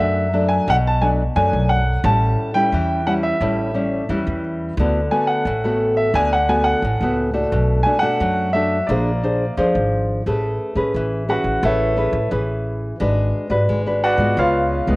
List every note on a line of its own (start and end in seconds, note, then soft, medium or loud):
0.00 0.57 F#2 medium
0.00 0.64 F#2 medium
0.00 0.27 F#3 medium
0.00 0.27 A3 medium
0.00 0.27 D4 medium
0.00 0.52 E5 medium
0.33 0.77 F#3 medium
0.33 0.77 A3 medium
0.33 0.78 D4 medium
0.49 0.67 G#5 medium
0.68 1.26 B1 medium
0.68 1.33 B2 medium
0.68 0.75 F#5 loud
0.87 1.04 A5 medium
1.01 1.22 F#3 medium
1.01 1.22 A3 medium
1.01 1.22 D4 medium
1.01 1.09 G#5 medium
1.36 1.50 F#2 medium
1.36 2.01 F#2 medium
1.36 1.80 F#3 medium
1.36 1.80 A3 medium
1.36 1.80 D4 medium
1.36 1.68 G#5 medium
1.53 1.97 B1 medium
1.69 2.05 F#5 medium
2.04 2.33 A1 loud
2.04 2.69 A2 medium
2.04 2.50 G3 medium
2.04 2.50 C#4 medium
2.04 2.51 E4 medium
2.04 2.53 A5 medium
2.54 3.01 G3 medium
2.54 3.01 C#4 medium
2.54 3.02 E4 medium
2.54 3.03 G5 loud
2.72 3.31 E2 medium
2.72 3.38 E3 medium
3.06 3.36 G3 medium
3.06 3.36 C#4 medium
3.06 3.36 E4 medium
3.06 3.12 F#5 medium
3.23 4.40 E5 medium
3.41 3.99 A1 medium
3.41 4.07 A2 medium
3.41 3.70 G3 medium
3.41 3.70 C#4 medium
3.41 3.71 E4 medium
3.74 4.04 G3 medium
3.74 4.04 C#4 medium
3.74 4.04 E4 medium
4.09 4.24 E2 medium
4.09 4.75 E3 medium
4.09 4.73 G3 medium
4.09 4.73 C#4 medium
4.09 4.73 E4 medium
4.27 4.71 E2 medium
4.77 5.07 D2 loud
4.77 5.44 D3 medium
4.77 4.99 A3 medium
4.77 4.99 B3 medium
4.77 5.00 F#4 medium
5.11 5.44 A3 medium
5.11 5.44 B3 medium
5.11 5.45 F#4 medium
5.11 5.28 G#5 medium
5.27 5.93 F#5 medium
5.45 6.04 A1 medium
5.45 6.12 A2 medium
5.64 6.10 A3 medium
5.64 6.10 B3 medium
5.64 6.10 F#4 medium
5.97 6.15 E5 medium
6.14 6.73 D2 loud
6.14 6.81 D3 medium
6.14 6.36 A3 medium
6.14 6.36 B3 medium
6.14 6.36 F#4 medium
6.14 6.33 G#5 loud
6.33 6.49 F#5 medium
6.48 6.81 A3 medium
6.48 6.81 B3 medium
6.48 6.82 F#4 medium
6.48 6.65 G#5 medium
6.64 7.13 F#5 medium
6.82 6.98 A1 medium
6.82 7.49 A2 medium
7.01 7.45 C#2 medium
7.01 7.30 A3 medium
7.01 7.31 B3 medium
7.01 7.31 F#4 medium
7.34 7.80 A3 medium
7.34 7.80 D4 medium
7.34 7.81 F#4 medium
7.52 7.81 B1 loud
7.52 8.18 B2 medium
7.83 7.97 A3 medium
7.83 7.97 D4 medium
7.83 7.97 F#4 medium
7.83 8.01 G#5 medium
7.99 8.49 A3 medium
7.99 8.49 D4 medium
7.99 8.49 F#4 medium
7.99 8.49 F#5 medium
8.20 8.79 F#2 medium
8.20 8.86 F#3 medium
8.53 8.77 A3 medium
8.53 8.77 D4 medium
8.53 8.78 F#4 medium
8.53 8.90 E5 medium
8.87 9.47 A#1 loud
8.87 9.55 A#3 medium
8.87 9.10 D4 medium
8.87 9.10 G#4 medium
8.87 9.10 C5 medium
8.87 9.53 D5 medium
9.23 9.44 D4 medium
9.23 9.44 G#4 medium
9.23 9.44 C5 medium
9.57 9.72 F2 medium
9.57 10.23 F3 medium
9.57 10.21 D4 medium
9.57 10.21 G#4 medium
9.57 10.21 C5 medium
9.75 10.19 G#1 medium
10.26 10.56 A1 medium
10.26 10.92 A3 medium
10.26 10.73 C#4 medium
10.26 10.73 G#4 medium
10.26 10.73 B4 medium
10.75 10.91 A2 medium
10.75 11.23 C#4 medium
10.75 11.23 G#4 medium
10.75 11.23 B4 medium
10.94 11.38 A1 medium
10.94 11.61 E3 medium
11.28 11.92 C#4 medium
11.28 11.63 F#4 medium
11.28 11.92 G#4 medium
11.28 11.92 B4 medium
11.28 11.63 F#5 medium
11.44 11.60 A1 medium
11.63 12.07 A1 loud
11.63 12.29 A3 medium
11.63 12.29 E4 medium
11.63 12.29 B4 medium
11.63 12.29 C#5 medium
11.63 12.29 E5 medium
11.97 12.18 C#4 medium
11.97 12.18 G#4 medium
11.97 12.18 B4 medium
12.13 12.28 A1 medium
12.31 12.90 A1 medium
12.31 12.97 E3 medium
12.31 12.95 C#4 medium
12.31 12.95 G#4 medium
12.31 12.95 B4 medium
13.00 13.30 G#1 loud
13.00 13.66 G#3 medium
13.00 13.47 D4 medium
13.00 13.47 F#4 medium
13.00 13.47 B4 medium
13.50 13.65 G#2 medium
13.50 13.80 D4 medium
13.50 13.80 F#4 medium
13.50 13.81 B4 medium
13.69 14.13 G#1 medium
13.69 14.18 G#3 medium
13.86 14.15 D4 medium
13.86 14.16 F#4 medium
13.86 14.16 B4 medium
14.04 14.37 F#4 medium
14.04 14.37 B4 medium
14.04 14.37 D5 medium
14.04 14.37 F#5 loud
14.18 14.34 G#2 medium
14.18 14.83 G#3 medium
14.18 14.83 B3 medium
14.18 14.84 F4 medium
14.37 14.81 C#2 loud
14.37 14.96 C#3 medium
14.37 14.96 F4 medium
14.37 14.96 B4 medium
14.37 14.96 C#5 medium
14.37 14.96 F5 medium
14.87 14.96 C#2 loud
14.87 14.96 G#3 medium
14.87 14.96 B3 medium
14.87 14.96 F4 medium